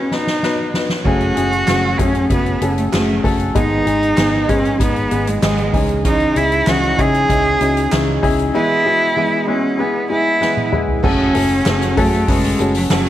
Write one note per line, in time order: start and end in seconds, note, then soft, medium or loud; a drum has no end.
0.00 1.07 B2 medium
0.00 1.07 F#3 medium
0.00 0.12 B3 medium
0.00 0.15 C#4 medium
0.00 0.12 D#4 medium
0.00 0.12 F#4 medium
0.00 1.07 G#4 loud
0.00 0.12 B4 medium
0.11 0.35 B3 medium
0.11 0.35 D#4 medium
0.11 0.75 D#4 medium
0.11 0.35 F#4 medium
0.11 0.35 B4 medium
0.11 snare medium
0.27 snare medium
0.43 0.66 B3 medium
0.43 0.66 D#4 medium
0.43 0.66 F#4 medium
0.43 0.66 B4 medium
0.43 snare medium
0.74 0.97 B3 medium
0.74 0.98 D#4 medium
0.74 0.98 F#4 medium
0.74 0.98 B4 medium
0.74 snare loud
0.89 snare medium
1.04 1.31 F#1 loud
1.04 1.96 C#3 medium
1.04 1.36 F#3 medium
1.04 1.36 A3 medium
1.04 1.29 A3 medium
1.04 1.36 C#4 medium
1.04 1.29 C#4 medium
1.04 2.01 F#4 medium
1.04 1.36 F#4 medium
1.04 1.29 F#4 medium
1.04 1.34 G#4 loud
1.04 1.29 G#4 medium
1.04 kick loud
1.04 crash medium
1.20 closed hi-hat soft
1.35 1.62 F#1 medium
1.35 1.59 A3 medium
1.35 1.60 C#4 medium
1.35 1.67 C#4 soft
1.35 1.68 F#4 medium
1.35 1.60 F#4 medium
1.35 1.67 G#4 medium
1.35 1.60 G#4 medium
1.35 closed hi-hat medium
1.53 closed hi-hat soft
1.67 1.94 F#1 loud
1.67 1.99 F#3 medium
1.67 1.99 A3 medium
1.67 1.91 A3 medium
1.67 1.99 C#4 medium
1.67 1.91 C#4 medium
1.67 1.91 F#4 medium
1.67 1.98 F#4 loud
1.67 1.91 G#4 medium
1.67 1.97 G#4 loud
1.67 snare loud
1.67 clap medium
1.67 closed hi-hat medium
1.98 2.25 F#2 medium
1.98 2.22 A3 medium
1.98 2.22 C#4 medium
1.98 2.30 C#4 medium
1.98 2.29 C#4 soft
1.98 2.22 F#4 medium
1.98 2.30 F#4 soft
1.98 2.30 G#4 medium
1.98 2.22 G#4 medium
1.98 kick medium
1.98 closed hi-hat medium
2.15 closed hi-hat soft
2.29 2.56 F#1 loud
2.29 2.61 A3 medium
2.29 2.53 A3 medium
2.29 2.74 B3 medium
2.29 2.53 C#4 medium
2.29 2.62 C#4 medium
2.29 2.53 F#4 medium
2.29 2.61 F#4 medium
2.29 2.53 G#4 medium
2.29 2.60 G#4 medium
2.29 kick medium
2.29 closed hi-hat medium
2.46 closed hi-hat soft
2.61 2.87 F#1 medium
2.61 2.84 A3 medium
2.61 2.85 C#4 medium
2.61 2.92 C#4 soft
2.61 2.85 F#4 medium
2.61 2.92 F#4 soft
2.61 2.92 G#4 soft
2.61 2.85 A4 medium
2.61 closed hi-hat medium
2.77 2.84 A3 medium
2.77 closed hi-hat medium
2.92 3.19 F#1 medium
2.92 3.23 F#3 medium
2.92 3.15 A3 medium
2.92 3.24 A3 medium
2.92 3.37 A3 medium
2.92 3.15 C#4 medium
2.92 3.24 C#4 medium
2.92 3.15 F#4 medium
2.92 3.24 F#4 medium
2.92 3.16 G#4 medium
2.92 3.22 G#4 loud
2.92 snare loud
2.92 clap medium
2.92 closed hi-hat medium
3.23 3.50 F#1 loud
3.23 3.47 A3 medium
3.23 3.47 C#4 medium
3.23 3.56 C#4 soft
3.23 3.47 F#4 medium
3.23 3.56 F#4 soft
3.23 3.55 G#4 medium
3.23 3.47 A4 loud
3.23 kick medium
3.23 open hi-hat medium
3.40 closed hi-hat soft
3.54 3.81 G#1 medium
3.54 3.86 G#2 medium
3.54 4.45 G#2 medium
3.54 4.45 D#3 medium
3.54 3.86 D#3 medium
3.54 3.78 G#3 medium
3.54 3.87 G#3 medium
3.54 3.78 B3 medium
3.54 3.86 B3 medium
3.54 3.78 D#4 medium
3.54 3.85 D#4 loud
3.54 4.51 D#4 medium
3.54 3.78 G#4 medium
3.54 3.85 G#4 medium
3.54 kick loud
3.54 closed hi-hat loud
3.86 4.12 G#1 medium
3.86 4.09 G#3 medium
3.86 4.16 G#3 medium
3.86 4.09 B3 medium
3.86 4.17 B3 medium
3.86 4.17 D#4 medium
3.86 4.09 D#4 medium
3.86 4.17 G#4 medium
3.86 4.09 G#4 medium
3.86 closed hi-hat medium
4.03 closed hi-hat soft
4.17 4.43 G#1 medium
4.17 4.48 G#2 medium
4.17 4.49 D#3 medium
4.17 4.40 G#3 medium
4.17 4.49 G#3 medium
4.17 4.40 B3 medium
4.17 4.48 B3 medium
4.17 4.40 D#4 medium
4.17 4.48 D#4 loud
4.17 4.40 G#4 medium
4.17 4.47 G#4 loud
4.17 snare loud
4.17 clap medium
4.17 closed hi-hat medium
4.48 4.75 G#2 medium
4.48 4.72 G#3 medium
4.48 4.78 G#3 soft
4.48 4.71 B3 medium
4.48 4.79 B3 soft
4.48 4.80 C#4 medium
4.48 4.80 D#4 soft
4.48 4.72 D#4 medium
4.48 4.79 G#4 medium
4.48 4.72 G#4 medium
4.48 kick medium
4.48 closed hi-hat medium
4.65 closed hi-hat soft
4.79 5.06 G#1 medium
4.79 5.11 G#3 medium
4.79 5.02 G#3 medium
4.79 5.02 B3 medium
4.79 5.11 B3 medium
4.79 5.29 B3 medium
4.79 5.02 D#4 medium
4.79 5.11 D#4 medium
4.79 5.03 G#4 medium
4.79 5.10 G#4 medium
4.79 kick medium
4.79 closed hi-hat loud
4.96 closed hi-hat soft
5.11 5.37 G#1 medium
5.11 5.34 G#3 medium
5.11 5.41 G#3 soft
5.11 5.34 B3 medium
5.11 5.41 B3 soft
5.11 5.34 D#4 medium
5.11 5.42 D#4 soft
5.11 5.42 G#4 medium
5.11 5.34 B4 medium
5.11 closed hi-hat medium
5.27 5.43 G#3 medium
5.27 closed hi-hat medium
5.41 5.68 G#1 medium
5.41 5.73 G#2 medium
5.41 5.73 D#3 medium
5.41 5.65 G#3 medium
5.41 5.73 G#3 loud
5.41 5.87 G#3 medium
5.41 5.65 B3 medium
5.41 5.74 B3 medium
5.41 5.65 D#4 medium
5.41 5.73 D#4 loud
5.41 5.65 G#4 medium
5.41 5.72 G#4 loud
5.41 snare loud
5.41 clap medium
5.41 closed hi-hat medium
5.58 closed hi-hat soft
5.73 6.25 C#2 medium
5.73 6.63 G#2 medium
5.73 6.24 E3 medium
5.73 6.04 G#3 soft
5.73 6.23 C#4 medium
5.73 6.04 C#4 soft
5.73 6.23 D#4 medium
5.73 6.05 D#4 medium
5.73 6.05 G#4 medium
5.73 6.24 G#4 medium
5.73 kick medium
5.73 open hi-hat medium
5.89 closed hi-hat soft
6.05 6.36 C#3 medium
6.05 6.36 E3 medium
6.05 6.36 G#3 medium
6.05 6.36 C#4 medium
6.05 6.39 D#4 loud
6.05 6.36 D#4 loud
6.05 6.34 G#4 medium
6.05 kick loud
6.05 closed hi-hat medium
6.20 closed hi-hat soft
6.36 6.62 C#2 medium
6.36 6.66 G#3 soft
6.36 6.59 C#4 medium
6.36 6.67 C#4 medium
6.36 6.59 D#4 medium
6.36 6.67 D#4 medium
6.36 6.59 E4 medium
6.36 6.70 E4 loud
6.36 6.67 G#4 medium
6.36 6.59 G#4 medium
6.36 closed hi-hat medium
6.52 closed hi-hat soft
6.67 6.93 C#2 loud
6.67 6.98 C#3 loud
6.67 6.98 E3 loud
6.67 6.99 G#3 medium
6.67 6.90 C#4 medium
6.67 6.99 C#4 loud
6.67 6.90 D#4 medium
6.67 6.98 D#4 medium
6.67 6.90 E4 medium
6.67 7.01 F#4 loud
6.67 6.90 G#4 medium
6.67 6.97 G#4 loud
6.67 snare loud
6.67 clap medium
6.67 closed hi-hat medium
6.83 closed hi-hat soft
6.98 7.24 C#3 medium
6.98 7.27 G#3 soft
6.98 7.21 C#4 medium
6.98 7.28 C#4 medium
6.98 7.21 D#4 medium
6.98 7.29 D#4 medium
6.98 7.21 E4 medium
6.98 7.29 G#4 medium
6.98 7.21 G#4 loud
6.98 8.24 G#4 loud
6.98 kick medium
6.98 closed hi-hat medium
7.14 closed hi-hat soft
7.29 7.55 C#2 loud
7.29 7.60 G#3 medium
7.29 7.61 C#4 medium
7.29 7.52 C#4 medium
7.29 7.52 D#4 medium
7.29 7.60 D#4 medium
7.29 7.52 E4 medium
7.29 7.53 G#4 medium
7.29 7.59 G#4 medium
7.29 kick medium
7.29 closed hi-hat loud
7.60 7.86 C#2 medium
7.60 7.91 G#3 soft
7.60 7.83 C#4 medium
7.60 7.91 C#4 soft
7.60 7.92 D#4 medium
7.60 7.84 D#4 medium
7.60 7.84 E4 medium
7.60 7.84 F#4 medium
7.60 7.91 G#4 medium
7.60 closed hi-hat medium
7.77 closed hi-hat medium
7.91 8.18 C#2 medium
7.91 8.23 C#3 medium
7.91 8.23 E3 medium
7.91 8.23 G#3 medium
7.91 8.14 C#4 medium
7.91 8.23 C#4 medium
7.91 8.15 D#4 medium
7.91 8.22 D#4 medium
7.91 8.15 E4 medium
7.91 8.15 G#4 medium
7.91 8.21 G#4 loud
7.91 snare medium
7.91 clap medium
7.91 closed hi-hat medium
8.22 8.49 C#2 loud
8.22 8.53 G#3 soft
8.22 8.45 C#4 loud
8.22 8.54 C#4 soft
8.22 8.45 D#4 medium
8.22 8.55 D#4 soft
8.22 8.46 E4 medium
8.22 8.54 G#4 soft
8.22 8.46 G#4 loud
8.22 kick medium
8.22 open hi-hat medium
8.39 closed hi-hat soft
8.53 9.44 B2 medium
8.53 8.85 E3 medium
8.53 8.77 G#3 medium
8.53 8.86 G#3 medium
8.53 8.77 B3 medium
8.53 8.86 B3 medium
8.53 8.77 E4 medium
8.53 8.85 E4 loud
8.53 9.44 E4 loud
8.53 8.77 G#4 medium
8.53 8.84 G#4 medium
8.85 9.08 G#3 medium
8.85 9.08 B3 medium
8.85 9.16 B3 soft
8.85 9.08 E4 medium
8.85 9.17 E4 soft
8.85 9.08 F#4 medium
8.85 9.16 G#4 medium
9.16 9.48 E3 medium
9.16 9.39 G#3 medium
9.16 9.48 G#3 loud
9.16 9.39 B3 medium
9.16 9.48 B3 medium
9.16 9.39 E4 medium
9.16 9.48 E4 loud
9.16 9.39 G#4 medium
9.16 9.46 G#4 medium
9.47 9.70 G#3 medium
9.47 9.70 B3 medium
9.47 9.78 B3 soft
9.47 9.81 C#4 medium
9.47 9.71 E4 medium
9.47 9.79 E4 medium
9.47 9.79 G#4 medium
9.47 9.71 G#4 medium
9.78 10.10 G#3 medium
9.78 10.01 G#3 medium
9.78 10.02 B3 medium
9.78 10.10 B3 medium
9.78 10.11 B3 medium
9.78 10.02 E4 medium
9.78 10.10 E4 medium
9.78 10.02 G#4 medium
9.78 10.09 G#4 medium
10.10 10.33 G#3 medium
10.10 10.33 B3 medium
10.10 10.41 B3 soft
10.10 10.33 E4 medium
10.10 10.69 E4 loud
10.10 10.41 E4 medium
10.10 10.41 G#4 medium
10.10 10.33 G#4 medium
10.41 10.72 E3 medium
10.41 10.64 G#3 medium
10.41 10.73 G#3 medium
10.41 10.64 B3 medium
10.41 10.73 B3 medium
10.41 10.64 E4 medium
10.41 10.72 E4 medium
10.41 10.71 G#4 medium
10.41 10.64 B4 medium
10.41 snare medium
10.57 high tom medium
10.72 10.95 G#3 medium
10.72 10.95 B3 medium
10.72 11.04 B3 soft
10.72 10.95 E4 medium
10.72 11.04 E4 soft
10.72 11.03 G#4 soft
10.72 10.95 G#4 medium
10.72 mid tom medium
10.88 floor tom medium
11.03 11.29 F#1 loud
11.03 11.93 C#3 medium
11.03 11.34 F#3 medium
11.03 11.26 A3 medium
11.03 11.35 A3 medium
11.03 11.26 C#4 medium
11.03 11.35 C#4 medium
11.03 12.00 C#4 loud
11.03 11.26 F#4 medium
11.03 11.34 F#4 medium
11.03 11.26 G#4 medium
11.03 11.33 G#4 loud
11.03 11.27 A4 medium
11.03 kick loud
11.03 crash loud
11.34 11.61 F#1 medium
11.34 11.57 A3 medium
11.34 11.58 C#4 medium
11.34 11.65 C#4 soft
11.34 11.58 F#4 medium
11.34 11.65 F#4 medium
11.34 11.66 G#4 medium
11.34 11.58 G#4 medium
11.34 11.58 A4 medium
11.34 hi-hat pedal medium
11.34 open hi-hat medium
11.50 open hi-hat soft
11.65 11.92 F#1 loud
11.65 11.97 F#3 medium
11.65 11.97 A3 loud
11.65 11.89 A3 medium
11.65 11.89 C#4 medium
11.65 11.97 C#4 loud
11.65 11.89 F#4 medium
11.65 11.97 F#4 medium
11.65 11.89 G#4 medium
11.65 11.95 G#4 loud
11.65 11.89 A4 medium
11.65 snare loud
11.65 clap medium
11.65 hi-hat pedal medium
11.65 open hi-hat loud
11.82 hi-hat pedal medium
11.96 12.23 F#2 medium
11.96 12.20 A3 medium
11.96 12.31 A3 medium
11.96 12.20 C#4 medium
11.96 12.27 C#4 soft
11.96 12.20 F#4 medium
11.96 12.28 F#4 medium
11.96 12.28 G#4 medium
11.96 12.20 G#4 medium
11.96 12.20 A4 loud
11.96 kick loud
11.96 hi-hat pedal medium
11.96 open hi-hat medium
12.13 snare soft
12.13 open hi-hat soft
12.27 12.54 F#1 loud
12.27 12.76 G#3 medium
12.27 12.59 A3 medium
12.27 12.51 A3 medium
12.27 12.60 C#4 medium
12.27 12.51 C#4 medium
12.27 12.51 F#4 medium
12.27 12.59 F#4 medium
12.27 12.51 G#4 medium
12.27 12.57 G#4 medium
12.27 12.51 B4 medium
12.27 kick loud
12.27 hi-hat pedal medium
12.27 open hi-hat loud
12.44 hi-hat pedal medium
12.44 open hi-hat soft
12.59 12.85 F#1 medium
12.59 12.82 A3 medium
12.59 12.82 C#4 medium
12.59 12.90 C#4 soft
12.59 12.82 F#4 medium
12.59 12.91 F#4 soft
12.59 12.90 G#4 soft
12.59 12.82 G#4 medium
12.59 12.82 A4 medium
12.59 hi-hat pedal medium
12.59 open hi-hat medium
12.74 12.83 F#3 medium
12.74 hi-hat pedal medium
12.74 open hi-hat medium
12.90 13.09 F#1 medium
12.90 13.09 F#3 medium
12.90 13.09 A3 medium
12.90 13.09 C#4 medium
12.90 13.09 F#4 medium
12.90 13.09 F#4 loud
12.90 13.09 G#4 medium
12.90 13.09 G#4 loud
12.90 13.09 A4 medium
12.90 snare loud
12.90 clap medium
12.90 hi-hat pedal medium
12.90 open hi-hat medium
13.06 hi-hat pedal medium
13.06 open hi-hat soft